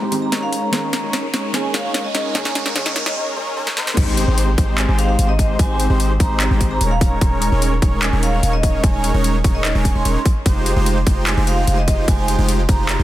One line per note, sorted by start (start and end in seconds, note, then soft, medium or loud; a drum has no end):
0.00 0.34 G#2 medium
0.00 0.30 G#3 medium
0.00 0.30 C4 medium
0.00 0.30 D#4 medium
0.00 0.11 G4 medium
0.00 0.30 G4 medium
0.00 0.30 C5 loud
0.00 0.12 A#5 medium
0.00 riser medium
0.11 0.51 D#3 medium
0.11 0.51 G#3 medium
0.11 0.51 C4 medium
0.11 0.52 G4 medium
0.11 closed hi-hat medium
0.22 0.29 A#5 medium
0.32 0.71 D#1 medium
0.32 0.70 G#3 medium
0.32 0.70 C#4 medium
0.32 0.70 D#4 medium
0.32 0.70 A#4 medium
0.32 0.70 C#5 loud
0.32 0.39 A#5 medium
0.32 snare medium
0.32 closed hi-hat medium
0.43 0.51 F5 medium
0.52 1.09 A#5 medium
0.52 closed hi-hat medium
0.71 1.01 D#1 medium
0.71 1.51 D#3 medium
0.71 1.01 G#3 medium
0.71 1.52 A#3 medium
0.71 1.01 C#4 medium
0.71 1.53 C#4 medium
0.71 1.01 D#4 medium
0.71 1.01 A#4 medium
0.71 1.01 C#5 medium
0.71 snare medium
0.71 closed hi-hat medium
0.75 1.53 G#4 medium
0.93 snare medium
0.93 closed hi-hat medium
1.03 1.32 D#1 medium
1.03 1.25 G#3 medium
1.03 1.25 C#4 medium
1.03 1.25 D#4 medium
1.03 1.25 A#4 medium
1.03 1.25 C#5 loud
1.13 snare medium
1.13 closed hi-hat medium
1.33 1.52 D#1 medium
1.33 1.52 G#3 medium
1.33 1.52 C#4 medium
1.33 1.52 D#4 medium
1.33 1.52 A#4 medium
1.33 1.52 C#5 loud
1.33 snare medium
1.33 closed hi-hat medium
1.52 1.82 D#1 loud
1.52 2.32 D#3 medium
1.52 1.82 G#3 medium
1.52 2.33 A#3 medium
1.52 1.82 C#4 medium
1.52 2.34 C#4 medium
1.52 1.82 D#4 medium
1.52 1.82 A#4 medium
1.52 1.82 C#5 medium
1.52 1.63 G#5 medium
1.52 snare medium
1.52 closed hi-hat medium
1.56 2.34 G#4 medium
1.74 1.81 F5 medium
1.74 snare medium
1.74 closed hi-hat medium
1.84 2.13 D#1 loud
1.84 2.07 G#3 medium
1.84 2.07 C#4 medium
1.84 2.07 D#4 medium
1.84 2.07 A#4 medium
1.84 2.07 C#5 medium
1.84 1.91 F5 medium
1.94 snare medium
1.94 closed hi-hat medium
2.05 2.11 D#5 medium
2.15 2.33 D#1 loud
2.15 2.33 G#3 medium
2.15 2.33 C#4 medium
2.15 2.33 D#4 medium
2.15 2.33 A#4 medium
2.15 2.33 C#5 medium
2.15 2.21 D#5 medium
2.15 snare medium
2.15 closed hi-hat medium
2.33 2.72 D#3 medium
2.33 2.63 G#3 medium
2.33 2.74 A#3 medium
2.33 2.63 C#4 medium
2.33 2.74 C#4 medium
2.33 2.63 D#4 medium
2.33 2.75 G#4 loud
2.33 2.63 A#4 medium
2.33 2.63 C#5 loud
2.33 2.42 G#5 medium
2.33 snare medium
2.33 closed hi-hat medium
2.45 2.52 G#5 medium
2.45 snare medium
2.55 snare loud
2.55 closed hi-hat medium
2.65 2.74 G#3 medium
2.65 2.74 C#4 medium
2.65 2.74 D#4 medium
2.65 2.74 A#4 medium
2.65 2.74 C#5 loud
2.65 snare medium
2.74 3.13 D#3 medium
2.74 3.04 G#3 medium
2.74 3.14 A#3 medium
2.74 3.04 C#4 medium
2.74 3.15 C#4 medium
2.74 3.04 D#4 medium
2.74 3.15 G#4 medium
2.74 3.04 A#4 medium
2.74 3.04 C#5 medium
2.74 snare medium
2.74 closed hi-hat medium
2.86 snare medium
2.96 snare loud
2.96 closed hi-hat medium
3.06 3.14 G#3 loud
3.06 3.14 C#4 medium
3.06 3.14 D#4 medium
3.06 3.14 A#4 medium
3.06 3.14 C#5 loud
3.06 3.16 D#5 medium
3.06 snare medium
3.16 3.35 G#3 medium
3.16 3.35 C#4 medium
3.16 3.35 D#4 medium
3.16 3.35 A#4 medium
3.16 3.35 C#5 loud
3.36 3.55 G#3 medium
3.36 3.55 C#4 medium
3.36 3.55 D#4 medium
3.36 3.55 A#4 medium
3.36 3.55 C#5 loud
3.56 3.75 G#3 medium
3.56 3.75 C#4 medium
3.56 3.75 D#4 medium
3.56 3.75 A#4 medium
3.56 3.75 C#5 loud
3.67 snare medium
3.77 3.96 G#3 medium
3.77 3.96 C4 medium
3.77 3.96 D#4 medium
3.77 3.96 A#4 medium
3.77 3.96 C5 loud
3.77 snare medium
3.87 snare medium
3.97 4.26 G#1 loud
3.97 4.25 G#3 medium
3.97 4.25 C4 medium
3.97 4.25 D#4 medium
3.97 4.25 G4 medium
3.97 4.25 C5 loud
3.97 kick loud
3.97 closed hi-hat medium
3.97 crash loud
3.97 impact medium
4.17 closed hi-hat medium
4.28 4.56 G#1 loud
4.28 4.50 G#3 medium
4.28 4.50 C4 medium
4.28 4.50 D#4 medium
4.28 4.50 G4 medium
4.28 4.50 C5 loud
4.38 closed hi-hat medium
4.58 4.86 G#1 loud
4.58 4.86 G#3 medium
4.58 4.86 C4 medium
4.58 4.86 D#4 medium
4.58 4.86 G4 medium
4.58 4.86 C5 loud
4.58 kick loud
4.58 closed hi-hat medium
4.78 4.88 G#5 medium
4.78 clap loud
4.78 closed hi-hat medium
4.88 5.17 G#1 medium
4.88 5.16 G#3 medium
4.88 5.16 C4 medium
4.88 5.16 D#4 medium
4.88 5.16 G4 medium
4.88 5.16 C5 loud
4.98 5.05 F5 medium
4.98 closed hi-hat medium
5.09 5.15 F5 medium
5.19 5.57 G#1 medium
5.19 5.57 G#3 medium
5.19 5.57 C4 medium
5.19 5.57 D#4 medium
5.19 5.57 G4 medium
5.19 5.57 C5 loud
5.19 closed hi-hat medium
5.29 5.35 D#5 medium
5.39 5.45 D#5 medium
5.39 kick medium
5.39 closed hi-hat medium
5.59 5.88 G#1 loud
5.59 5.87 G#3 medium
5.59 5.87 C4 medium
5.59 5.87 D#4 medium
5.59 5.87 G4 medium
5.59 5.87 C5 loud
5.59 5.66 G#5 medium
5.59 kick loud
5.59 closed hi-hat medium
5.70 5.76 G#5 medium
5.80 closed hi-hat medium
5.90 6.18 G#1 loud
5.90 6.12 G#3 medium
5.90 6.12 C4 medium
5.90 6.12 D#4 medium
5.90 6.12 G4 medium
5.90 6.12 C5 loud
6.00 closed hi-hat medium
6.20 6.49 G#1 loud
6.20 6.48 G#3 medium
6.20 6.48 C4 medium
6.20 6.48 D#4 medium
6.20 6.48 G4 medium
6.20 6.48 C5 loud
6.20 6.61 A#5 medium
6.20 kick loud
6.20 closed hi-hat medium
6.40 clap loud
6.40 closed hi-hat medium
6.51 6.79 G#1 medium
6.51 6.79 G#3 medium
6.51 6.79 C4 medium
6.51 6.79 D#4 medium
6.51 6.79 G4 medium
6.51 6.79 C5 loud
6.61 kick medium
6.61 closed hi-hat medium
6.71 6.77 A#5 medium
6.81 7.19 D#1 medium
6.81 7.19 G#3 medium
6.81 7.19 C#4 medium
6.81 7.19 D#4 medium
6.81 7.19 A#4 medium
6.81 7.19 C#5 loud
6.81 6.87 A#5 medium
6.81 closed hi-hat medium
6.91 6.99 F5 loud
7.01 7.58 A#5 loud
7.01 kick loud
7.01 closed hi-hat medium
7.21 7.50 D#1 medium
7.21 7.50 G#3 medium
7.21 7.50 C#4 medium
7.21 7.50 C#5 loud
7.21 kick loud
7.21 closed hi-hat medium
7.42 closed hi-hat medium
7.52 7.80 D#1 medium
7.52 7.74 G#3 medium
7.52 7.74 C#4 medium
7.52 7.74 D#4 medium
7.52 7.74 A#4 medium
7.52 7.74 C#5 loud
7.62 closed hi-hat medium
7.82 8.11 D#1 loud
7.82 8.10 G#3 medium
7.82 8.10 C#4 medium
7.82 8.10 D#4 medium
7.82 8.10 A#4 medium
7.82 8.10 C#5 loud
7.82 kick loud
7.82 closed hi-hat medium
8.03 8.12 G#5 medium
8.03 clap loud
8.03 closed hi-hat medium
8.13 8.41 D#1 medium
8.13 8.41 G#3 medium
8.13 8.41 C#4 medium
8.13 8.41 D#4 medium
8.13 8.41 A#4 medium
8.13 8.41 C#5 loud
8.23 8.29 F5 medium
8.23 closed hi-hat medium
8.33 8.40 F5 medium
8.43 8.82 D#1 loud
8.43 8.81 G#3 medium
8.43 8.81 C#4 medium
8.43 8.81 D#4 medium
8.43 8.81 A#4 medium
8.43 8.81 C#5 loud
8.43 closed hi-hat medium
8.53 8.60 D#5 medium
8.63 8.70 D#5 medium
8.63 kick medium
8.63 closed hi-hat medium
8.84 9.12 D#1 loud
8.84 9.12 G#3 medium
8.84 9.12 C#4 medium
8.84 9.12 D#4 medium
8.84 9.12 A#4 medium
8.84 9.12 C#5 loud
8.84 8.90 G#5 medium
8.84 kick loud
8.84 closed hi-hat medium
8.94 9.00 G#5 medium
9.04 closed hi-hat medium
9.14 9.42 D#1 medium
9.14 9.36 G#3 medium
9.14 9.36 C#4 medium
9.14 9.36 D#4 medium
9.14 9.36 A#4 medium
9.14 9.36 C#5 loud
9.24 closed hi-hat medium
9.44 9.73 D#1 loud
9.44 9.73 G#3 medium
9.44 9.73 C#4 medium
9.44 9.73 D#4 medium
9.44 9.73 A#4 medium
9.44 9.73 C#5 loud
9.44 kick loud
9.44 closed hi-hat medium
9.55 9.73 D#5 medium
9.65 clap loud
9.65 closed hi-hat medium
9.75 9.93 D#1 medium
9.75 9.93 G#3 medium
9.75 9.93 C#4 medium
9.75 9.93 D#4 medium
9.75 9.93 A#4 medium
9.75 9.93 C#5 loud
9.75 9.81 G#5 medium
9.85 9.92 G#5 medium
9.85 kick medium
9.85 closed hi-hat medium
9.95 10.03 D#1 loud
9.95 10.03 G#3 medium
9.95 10.03 C#4 medium
9.95 10.03 D#4 medium
9.95 10.03 A#4 medium
9.95 10.03 C#5 medium
9.95 10.30 C6 medium
10.05 10.17 D#1 medium
10.05 10.19 G#3 medium
10.05 10.19 C#4 medium
10.05 10.19 D#4 medium
10.05 10.19 A#4 medium
10.05 10.19 C#5 loud
10.05 closed hi-hat medium
10.26 kick loud
10.26 closed hi-hat medium
10.46 10.74 F1 loud
10.46 10.74 G#3 medium
10.46 10.74 D#4 medium
10.46 10.74 F4 medium
10.46 10.74 G4 medium
10.46 10.74 C5 loud
10.46 kick loud
10.46 closed hi-hat medium
10.66 closed hi-hat medium
10.76 11.05 F1 medium
10.76 10.98 G#3 medium
10.76 10.98 D#4 medium
10.76 10.98 F4 medium
10.76 10.98 G4 medium
10.76 10.98 C5 loud
10.86 closed hi-hat medium
11.07 11.35 F1 medium
11.07 11.35 G#3 medium
11.07 11.35 D#4 medium
11.07 11.35 F4 medium
11.07 11.35 G4 medium
11.07 11.35 C5 loud
11.07 kick loud
11.07 closed hi-hat medium
11.27 11.36 G#5 medium
11.27 clap loud
11.27 closed hi-hat medium
11.37 11.65 F1 medium
11.37 11.65 G#3 medium
11.37 11.65 D#4 medium
11.37 11.65 F4 medium
11.37 11.65 G4 medium
11.37 11.65 C5 loud
11.47 11.54 F5 medium
11.47 closed hi-hat medium
11.58 11.64 F5 medium
11.67 12.06 F1 loud
11.67 12.06 G#3 medium
11.67 12.06 D#4 medium
11.67 12.06 F4 medium
11.67 12.06 G4 medium
11.67 12.06 C5 loud
11.67 closed hi-hat medium
11.78 11.84 D#5 medium
11.88 11.94 D#5 medium
11.88 kick medium
11.88 closed hi-hat medium
12.08 12.36 F1 loud
12.08 12.36 G#3 medium
12.08 12.36 D#4 medium
12.08 12.36 F4 medium
12.08 12.36 G4 medium
12.08 12.36 C5 loud
12.08 12.15 G#5 medium
12.08 kick loud
12.08 closed hi-hat medium
12.18 12.25 G#5 medium
12.28 closed hi-hat medium
12.38 12.67 F1 loud
12.38 12.61 G#3 medium
12.38 12.61 D#4 medium
12.38 12.61 F4 medium
12.38 12.61 G4 medium
12.38 12.61 C5 loud
12.49 closed hi-hat medium
12.69 12.97 F1 loud
12.69 12.97 G#3 medium
12.69 12.97 D#4 medium
12.69 12.97 F4 medium
12.69 12.97 G4 medium
12.69 12.97 C5 loud
12.69 13.03 A#5 medium
12.69 kick loud
12.69 closed hi-hat medium
12.89 clap loud
12.89 closed hi-hat medium
12.99 13.03 F1 medium
12.99 13.03 G#3 medium
12.99 13.03 D#4 medium
12.99 13.03 F4 medium
12.99 13.03 G4 medium
12.99 13.03 C5 loud